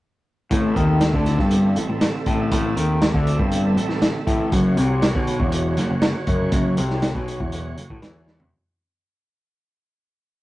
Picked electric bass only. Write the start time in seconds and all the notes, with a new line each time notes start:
0.51 A1
0.76 D#2
1.13 D2
1.39 G1
1.77 A1
1.90 A1
2.26 A1
2.51 A1
2.77 D#2
3.14 D2
3.39 G1
3.76 A1
3.89 A1
4.27 A1
4.52 F#1
4.77 C2
5.15 B1
5.40 E1
5.78 F#1
5.90 F#1
6.27 F#1
6.52 F#1
6.78 C2
7.15 B1
7.40 E1
7.78 F#1
7.90 A1
8.02 E2
8.41 E1